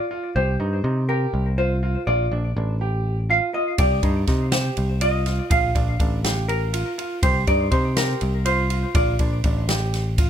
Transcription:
Already playing: hollow-body jazz guitar D5
0.11 grand piano F4
0.36 picked electric bass C2, grand piano G4, hollow-body jazz guitar C5
0.60 picked electric bass G2, grand piano D#4
0.84 picked electric bass C3, grand piano D#4
1.09 grand piano G4, hollow-body jazz guitar A#4
1.33 picked electric bass C2
1.58 grand piano F4, hollow-body jazz guitar C5
1.83 grand piano F4
2.07 picked electric bass A#1, grand piano F4, hollow-body jazz guitar D5
2.31 picked electric bass A#1, grand piano D4
2.56 picked electric bass A1, grand piano D4
2.81 grand piano G4
3.30 grand piano F4, hollow-body jazz guitar F5
3.54 grand piano F4, hollow-body jazz guitar D#5
3.78 picked electric bass C2, grand piano G4, hollow-body jazz guitar D5, kick, ride
4.03 picked electric bass G2, grand piano D#4, kick, ride
4.27 picked electric bass C3, grand piano D#4, kick, snare, ride
4.52 grand piano G4, hollow-body jazz guitar C5, snare, ride
4.77 picked electric bass C2, ride
5.01 grand piano F4, hollow-body jazz guitar D#5, ride
5.26 grand piano F4, snare, ride
5.50 picked electric bass A#1, grand piano F4, hollow-body jazz guitar F5, kick, ride
5.75 picked electric bass A#1, grand piano D4, kick, ride
6.00 picked electric bass A1, grand piano D4, kick, ride
6.24 grand piano G4, snare, ride
6.48 hollow-body jazz guitar A#4, ride
6.73 grand piano F4, ride
6.98 grand piano F4, ride
7.23 picked electric bass C2, grand piano G4, hollow-body jazz guitar C5, kick, ride
7.47 picked electric bass G2, grand piano D#4, hollow-body jazz guitar D5, kick, ride
7.71 picked electric bass C3, grand piano D#4, hollow-body jazz guitar C5, kick, ride
7.96 grand piano G4, hollow-body jazz guitar A#4, snare, ride
8.21 picked electric bass C2, ride
8.45 grand piano F4, hollow-body jazz guitar C5, ride
8.70 grand piano F4, ride
8.95 picked electric bass A#1, grand piano F4, hollow-body jazz guitar D5, kick, ride
9.19 picked electric bass A#1, grand piano D4, kick, ride
9.44 picked electric bass A1, grand piano D4, kick, ride
9.69 grand piano G4, snare, ride
9.94 snare, ride
10.18 grand piano F4, kick, ride

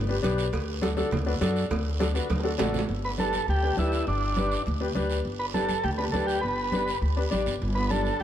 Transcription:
Already playing: upright bass G1
0.09 upright piano D4 G4 B4
0.22 upright bass B1, upright piano D4 G4 B4, cowbell, high conga, short guiro
0.38 short guiro
0.53 upright bass D2, cowbell, long guiro
0.82 upright piano D4 F#4 A4, cowbell, high conga, short guiro
0.97 upright piano D4 F#4 A4, high conga, short guiro
1.11 upright bass D2, cowbell, low conga, long guiro
1.26 upright piano D4 F#4 B4
1.41 upright bass F#2, upright piano D4 F#4 A4, cowbell, high conga, short guiro
1.56 short guiro
1.71 upright bass D2, cowbell, low conga, long guiro
2.00 upright piano D4 F#4 A4, cowbell, high conga, short guiro
2.14 upright piano D4 F#4 B4, short guiro
2.30 upright bass D2, cowbell, high conga, high timbale, long guiro
2.40 upright piano D4, high timbale
2.44 upright piano F#4 A4
2.58 upright bass A1, upright piano D4 F#4 A4, cowbell, low conga, low timbale, short guiro
2.74 low conga, short guiro
2.79 low timbale
2.89 upright bass G1, long guiro
3.05 transistor combo organ B4
3.18 upright piano D4 G4 B4, transistor combo organ A4, high conga, short guiro
3.33 high conga, short guiro
3.48 upright bass D2, transistor combo organ G4, long guiro
3.63 upright piano D4 G4 B4
3.77 upright bass D2, upright piano D4 G4 B4, transistor combo organ E4, high conga, short guiro
3.92 short guiro
4.07 upright bass G1, transistor combo organ D4, long guiro
4.36 upright piano D4 G4 B4, high conga, short guiro
4.51 short guiro
4.66 upright bass D2, long guiro
4.81 upright piano D4 G4 B4
4.95 upright bass D2, upright piano D4 G4 B4, high conga, short guiro
5.10 short guiro
5.25 upright bass G1, long guiro
5.39 transistor combo organ B4
5.54 upright piano D4 G4 B4, transistor combo organ A4, high conga, short guiro
5.69 high conga, short guiro
5.84 upright bass D2, transistor combo organ G4, long guiro
5.98 upright piano D4 G4 B4, transistor combo organ B4
6.12 upright bass D2, upright piano D4 G4 B4, transistor combo organ A4, high conga, short guiro
6.27 transistor combo organ G4, short guiro
6.41 upright bass G1, transistor combo organ B4, long guiro
6.72 upright piano D4 G4 B4, high conga, short guiro
6.88 short guiro
7.02 upright bass D2, long guiro
7.17 upright piano D4 G4 B4
7.31 upright bass A1, upright piano D4 G4 D5, high conga, short guiro
7.46 upright bass G1, short guiro
7.61 upright bass G1, long guiro
7.75 clarinet B3, transistor combo organ B4
7.90 upright piano D4 G4 D5, clarinet D4, transistor combo organ A4, high conga, short guiro
8.05 short guiro
8.20 long guiro

